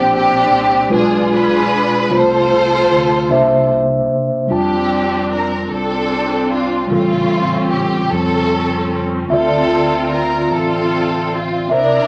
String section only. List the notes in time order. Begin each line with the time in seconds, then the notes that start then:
Already playing: C4 D4 G4
0.13 C4 D4 G4
0.92 D4 F4 G#4
1.33 D4 G#4 B4
2.13 F4 A4 C5
4.52 C4 D4 G4
5.32 A#4
5.71 C4 D4 A4
6.52 F4
6.92 C4 C#4 F4
7.71 G4
8.11 C4 C#4 A4
9.32 C4 F4 A4
10.13 A#4
10.52 C4 F4 A4
11.33 F4
11.73 D4 E4 A#4